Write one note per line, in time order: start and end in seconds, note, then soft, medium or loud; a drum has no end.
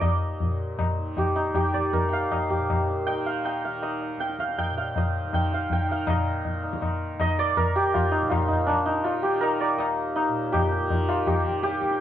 0.00 2.03 D#2 medium
0.00 0.40 A#2 medium
0.00 0.96 D#3 medium
0.00 0.52 F4 medium
0.00 1.18 G4 medium
0.00 1.33 A#4 medium
0.00 1.80 D#5 medium
0.00 tabla na loud
0.00 tabla ge medium
0.40 2.56 A#2 medium
0.40 tabla tin medium
0.40 tabla ge medium
0.79 tabla na medium
0.79 tabla ge medium
0.96 1.49 D#3 medium
1.17 1.55 G4 medium
1.17 tabla na medium
1.17 tabla ge medium
1.36 1.80 D#4 medium
1.36 tabla te medium
1.49 3.09 D#3 medium
1.55 2.50 G4 medium
1.55 tabla na medium
1.55 tabla ge medium
1.74 2.38 D5 medium
1.74 tabla ge soft
1.93 4.76 A#4 medium
1.93 tabla tin medium
1.93 tabla ge medium
2.03 4.17 D#2 medium
2.09 3.06 G5 medium
2.09 tabla na medium
2.13 3.26 F5 medium
2.31 3.83 D#5 medium
2.31 tabla na medium
2.31 tabla ge medium
2.50 5.65 G4 medium
2.50 tabla ge medium
2.57 4.69 A#2 medium
2.70 tabla na medium
2.70 tabla ge medium
2.88 tabla te medium
3.07 3.64 D#3 medium
3.07 3.45 G5 loud
3.07 tabla na medium
3.26 3.64 F5 medium
3.45 4.20 G5 medium
3.45 tabla na medium
3.64 5.24 D#3 medium
3.64 4.39 F5 medium
3.82 4.97 D#5 medium
3.82 tabla na medium
4.01 tabla na medium
4.17 7.67 D#2 medium
4.17 4.58 G5 loud
4.17 tabla te medium
4.29 tabla te medium
4.39 4.77 F5 medium
4.39 tabla ke medium
4.49 tabla te medium
4.58 5.34 G5 loud
4.58 tabla na medium
4.58 tabla ge medium
4.70 6.09 A#2 medium
4.78 5.53 F5 medium
4.96 6.09 D#5 medium
4.96 tabla tin medium
4.96 tabla ge medium
5.24 5.77 D#3 medium
5.33 5.72 G5 medium
5.33 tabla na medium
5.33 tabla ge medium
5.52 5.91 F5 medium
5.52 tabla te medium
5.70 7.81 G5 medium
5.70 tabla tin medium
5.70 tabla ge medium
5.77 6.62 D#3 medium
5.89 8.13 F5 medium
5.89 tabla na medium
6.07 8.19 A#2 medium
6.07 7.20 D#5 medium
6.07 tabla na loud
6.07 tabla ge medium
6.45 tabla tin medium
6.45 tabla ge medium
6.62 7.14 D#3 medium
6.62 tabla na medium
6.73 tabla ke medium
6.82 tabla na medium
6.82 tabla ge medium
7.14 8.71 D#3 medium
7.20 7.45 D#5 loud
7.20 tabla na medium
7.20 tabla ge medium
7.39 8.17 D5 loud
7.57 9.40 A#4 loud
7.57 tabla na medium
7.57 tabla ge medium
7.67 9.77 D#2 medium
7.76 9.22 G4 loud
7.94 8.29 F4 medium
7.94 tabla tin medium
7.94 tabla ge medium
8.11 8.48 D#4 medium
8.11 tabla na medium
8.19 10.28 A#2 medium
8.19 tabla ke medium
8.30 9.04 F4 medium
8.30 tabla na medium
8.30 tabla ge medium
8.48 8.72 D#4 medium
8.48 tabla ge medium
8.66 8.92 D4 medium
8.66 tabla na medium
8.66 tabla ge medium
8.71 9.24 D#3 medium
8.86 9.66 D#4 medium
8.86 tabla te medium
9.04 11.08 F4 medium
9.04 tabla na medium
9.23 10.80 D#3 medium
9.23 10.52 G4 medium
9.41 12.00 A#4 loud
9.41 tabla na medium
9.60 9.84 D5 medium
9.60 tabla na medium
9.77 11.85 D#2 medium
9.77 12.01 D#5 medium
9.77 tabla na medium
10.16 12.01 D#4 medium
10.16 tabla na medium
10.28 12.01 A#2 medium
10.52 11.27 G4 medium
10.52 tabla na medium
10.52 tabla ge medium
10.72 tabla te medium
10.80 11.33 D#3 medium
10.90 tabla tin medium
10.90 tabla ge medium
11.09 12.01 F4 medium
11.09 tabla na medium
11.27 11.63 G4 medium
11.27 tabla na medium
11.27 tabla ge medium
11.33 12.01 D#3 medium
11.44 tabla ge medium
11.63 12.01 G4 loud
11.63 tabla te medium
11.73 tabla te medium
11.82 12.01 D#2 medium
11.82 tabla ke medium
11.91 tabla te medium